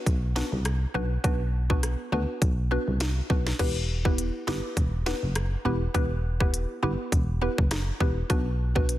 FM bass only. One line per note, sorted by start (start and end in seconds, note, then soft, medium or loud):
0.06 0.43 B1 loud
0.52 0.86 C2 loud
0.95 1.18 B1 medium
1.24 1.96 B1 loud
2.12 2.25 D2 loud
2.42 2.78 B1 loud
2.88 3.21 C2 medium
3.30 3.53 B1 medium
3.59 4.31 E1 loud
4.48 4.61 G1 loud
4.77 5.13 E1 medium
5.23 5.57 F#1 medium
5.65 5.89 E1 loud
5.95 6.66 E1 loud
6.83 6.96 G1 loud
7.12 7.49 E1 loud
7.58 7.92 F#1 medium
8.01 8.24 E1 medium
8.30 8.98 B1 loud